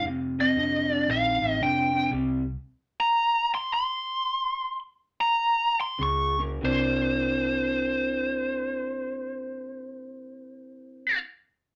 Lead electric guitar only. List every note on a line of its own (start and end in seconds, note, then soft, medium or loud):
0.41 0.90 D#5 medium
0.90 1.10 D5 medium
1.11 1.53 F5 medium
1.53 1.63 D#5 medium
1.63 2.10 G5 loud
3.00 3.50 A#5 loud
3.55 3.71 C6 loud
3.73 4.79 C6 loud
5.21 5.77 A#5 loud
5.81 6.00 C6 medium
6.03 6.40 C#6 loud
6.65 11.19 C5 medium